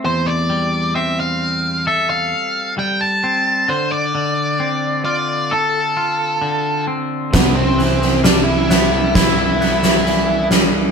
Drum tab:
SD |----------------|----------------|o-ooo-o-o-ooo-o-|
BD |----------------|----------------|o-------o-------|